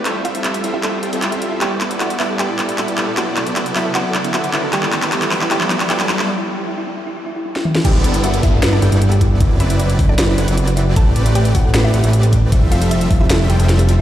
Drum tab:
CC |----------------|----------------|----------------|----------------|
HH |x-xxxxx-x-xxxxx-|x-xxxxo-x-xxxxx-|x-xxxxo-x-xxxxx-|x-xxxxo-x-xxxxx-|
CP |x---x---x---x---|x-x-x-x-x-x-x-x-|x-x-x-x-x-x-x-x-|xxxxxxxxxxxxxxxx|
SD |----------------|----------------|----------------|----------------|
T2 |----------------|----------------|----------------|----------------|
BD |----------------|----------------|----------------|----------------|

CC |----------------|x---------------|----------------|----------------|
HH |----------------|x-xxxxo-x-xxxxx-|x-xxxxo-x-xxxxx-|x-xxxxo-x-xxxxx-|
CP |----------------|----------------|----------------|----------------|
SD |-------------o-o|--------o-------|--------o-------|--------o-------|
T2 |--------------o-|----------------|----------------|----------------|
BD |----------------|o-----o-------o-|o-----o---------|o-----o-------o-|

CC |----------------|
HH |x-xxxxo-x-xxxxx-|
CP |----------------|
SD |--------o---o---|
T2 |----------------|
BD |o-----o---------|